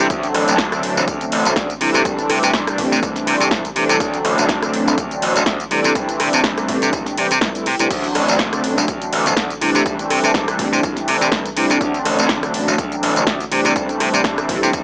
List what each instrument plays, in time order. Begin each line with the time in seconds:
0.10 slap bass D2, analog polysynth D3 F#3 A3 C4 D4, kick, closed hi-hat, tambourine
0.23 closed hi-hat, tambourine
0.34 slap bass A1, cross-stick, open hi-hat
0.48 slap bass A1, closed hi-hat, tambourine
0.58 analog polysynth D3 F#3 A3 C4 D4, kick, snare, closed hi-hat, tambourine
0.72 cross-stick, closed hi-hat, tambourine
0.83 slap bass A1, open hi-hat
0.97 slap bass A1, tambourine
1.08 slap bass D2, kick, closed hi-hat, tambourine
1.21 analog polysynth D3 F#3 A3 C4 D4, closed hi-hat, tambourine
1.32 slap bass A1, open hi-hat
1.45 slap bass A1, closed hi-hat, tambourine
1.56 slap bass D2, analog polysynth D3 F#3 A3 C4 D4, kick, snare, closed hi-hat, tambourine
1.70 closed hi-hat, tambourine
1.81 slap bass C3, analog polysynth E3 G3 A3 C4 D4, open hi-hat
1.94 slap bass C3, closed hi-hat, tambourine
2.05 slap bass C2, analog polysynth E3 G3 A3 C4 D4, kick, closed hi-hat, tambourine
2.18 muted slap bass stroke, closed hi-hat, tambourine
2.30 slap bass C3, cross-stick, open hi-hat
2.43 slap bass C3, closed hi-hat, tambourine
2.53 slap bass C2, analog polysynth E3 G3 A3 C4 D4, kick, snare, closed hi-hat, tambourine
2.67 cross-stick, closed hi-hat, tambourine
2.78 slap bass C3, kick, open hi-hat
2.92 slap bass C3, tambourine
3.03 slap bass C2, kick, closed hi-hat, tambourine
3.16 analog polysynth E3 G3 A3 C4 D4, muted slap bass stroke, snare, closed hi-hat, tambourine
3.27 slap bass C3, open hi-hat
3.40 slap bass C3, closed hi-hat, tambourine
3.51 slap bass C2, analog polysynth E3 G3 A3 C4 D4, kick, snare, closed hi-hat, tambourine
3.65 closed hi-hat, tambourine
3.76 slap bass C3, analog polysynth E3 G3 A3 C4 D4, open hi-hat
3.89 slap bass C3, closed hi-hat, tambourine
4.00 slap bass D2, analog polysynth D3 F#3 A3 C4 D4, kick, closed hi-hat, tambourine
4.14 closed hi-hat, tambourine
4.25 slap bass A1, cross-stick, open hi-hat
4.38 slap bass A1, closed hi-hat, tambourine
4.48 slap bass D2, analog polysynth D3 F#3 A3 C4 D4, kick, snare, closed hi-hat, tambourine
4.63 cross-stick, closed hi-hat, tambourine
4.73 slap bass A1, open hi-hat
4.87 slap bass A1, tambourine
4.98 slap bass D2, kick, closed hi-hat, tambourine
5.11 analog polysynth D3 F#3 A3 C4 D4, closed hi-hat, tambourine
5.22 slap bass A1, open hi-hat
5.36 slap bass A1, closed hi-hat, tambourine
5.46 slap bass D2, analog polysynth D3 F#3 A3 C4 D4, kick, snare, closed hi-hat, tambourine
5.60 closed hi-hat, tambourine
5.71 slap bass C3, analog polysynth E3 G3 A3 C4 D4, open hi-hat
5.84 slap bass C3, closed hi-hat, tambourine
5.95 slap bass C2, analog polysynth E3 G3 A3 C4 D4, kick, closed hi-hat, tambourine
6.09 muted slap bass stroke, closed hi-hat, tambourine
6.20 slap bass C3, cross-stick, open hi-hat
6.33 slap bass C3, closed hi-hat, tambourine
6.44 slap bass C2, analog polysynth E3 G3 A3 C4 D4, kick, snare, closed hi-hat, tambourine
6.58 cross-stick, closed hi-hat, tambourine
6.68 slap bass C3, kick, open hi-hat
6.82 slap bass C3, closed hi-hat, tambourine
6.93 slap bass C2, kick, closed hi-hat, tambourine
7.06 analog polysynth E3 G3 A3 C4 D4, muted slap bass stroke, snare, closed hi-hat, tambourine
7.17 slap bass C3, analog polysynth E3 G3 A3 C4 G4, open hi-hat
7.31 slap bass C3, closed hi-hat, tambourine
7.41 slap bass C2, analog polysynth E3 G3 A3 C4 D4, kick, snare, closed hi-hat, tambourine
7.55 analog polysynth E3 G3 A3 C4 E4, closed hi-hat, tambourine
7.66 slap bass C3, open hi-hat
7.79 slap bass C3, analog polysynth E3 G3 A3 C4 D4, closed hi-hat, tambourine
7.90 slap bass D2, analog polysynth D3 F#3 A3 C4 D4, kick, closed hi-hat, crash, tambourine
8.04 closed hi-hat, tambourine
8.15 slap bass A1, cross-stick, open hi-hat
8.28 slap bass A1, closed hi-hat, tambourine
8.39 analog polysynth D3 F#3 A3 C4 D4, kick, snare, closed hi-hat, tambourine
8.53 cross-stick, closed hi-hat, tambourine
8.64 slap bass A1, open hi-hat
8.77 slap bass A1, tambourine
8.88 kick, closed hi-hat, tambourine
9.01 analog polysynth D3 F#3 A3 C4 D4, closed hi-hat, tambourine
9.13 slap bass A1, open hi-hat
9.26 slap bass A1, closed hi-hat, tambourine
9.37 slap bass D2, analog polysynth D3 F#3 A3 C4 D4, kick, snare, closed hi-hat, tambourine
9.50 closed hi-hat, tambourine
9.61 slap bass C3, analog polysynth E3 G3 A3 C4 D4, open hi-hat
9.75 slap bass C3, closed hi-hat, tambourine
9.85 slap bass C2, analog polysynth E3 G3 A3 C4 D4, kick, closed hi-hat, tambourine
9.99 muted slap bass stroke, closed hi-hat, tambourine
10.10 slap bass C3, cross-stick, open hi-hat
10.23 slap bass C3, closed hi-hat, tambourine
10.34 slap bass C2, analog polysynth E3 G3 A3 C4 D4, kick, snare, closed hi-hat, tambourine
10.48 cross-stick, closed hi-hat, tambourine
10.59 slap bass C3, kick, open hi-hat
10.72 slap bass C3, tambourine
10.83 slap bass C2, kick, closed hi-hat, tambourine
10.96 analog polysynth E3 G3 A3 C4 D4, muted slap bass stroke, snare, closed hi-hat, tambourine
11.08 slap bass C3, open hi-hat
11.21 slap bass C3, closed hi-hat, tambourine
11.32 slap bass C2, analog polysynth E3 G3 A3 C4 D4, kick, snare, closed hi-hat, tambourine
11.46 closed hi-hat, tambourine
11.56 slap bass C3, analog polysynth E3 G3 A3 C4 D4, open hi-hat
11.70 slap bass C3, closed hi-hat, tambourine
11.81 slap bass D2, analog polysynth D3 F#3 A3 C4 D4, kick, closed hi-hat, tambourine
11.94 closed hi-hat, tambourine
12.05 slap bass A1, cross-stick, open hi-hat
12.19 slap bass A1, closed hi-hat, tambourine
12.29 slap bass D2, analog polysynth D3 F#3 A3 C4 D4, kick, snare, closed hi-hat, tambourine
12.43 cross-stick, closed hi-hat, tambourine
12.54 slap bass A1, open hi-hat
12.67 slap bass A1, tambourine
12.78 slap bass D2, kick, closed hi-hat, tambourine
12.91 analog polysynth D3 F#3 A3 C4 D4, closed hi-hat, tambourine
13.03 slap bass A1, open hi-hat
13.16 slap bass A1, closed hi-hat, tambourine
13.27 slap bass D2, analog polysynth D3 F#3 A3 C4 D4, kick, snare, closed hi-hat, tambourine
13.40 closed hi-hat, tambourine
13.51 slap bass C3, analog polysynth E3 G3 A3 C4 D4, open hi-hat
13.65 slap bass C3, closed hi-hat, tambourine
13.75 slap bass C2, analog polysynth E3 G3 A3 C4 D4, kick, closed hi-hat, tambourine
13.89 muted slap bass stroke, closed hi-hat, tambourine
14.00 slap bass C3, cross-stick, open hi-hat
14.13 slap bass C3, closed hi-hat, tambourine
14.24 slap bass C2, analog polysynth E3 G3 A3 C4 D4, kick, snare, closed hi-hat, tambourine
14.38 cross-stick, closed hi-hat, tambourine
14.49 slap bass C3, kick, open hi-hat
14.62 slap bass C3, tambourine
14.73 slap bass C2, kick, closed hi-hat, tambourine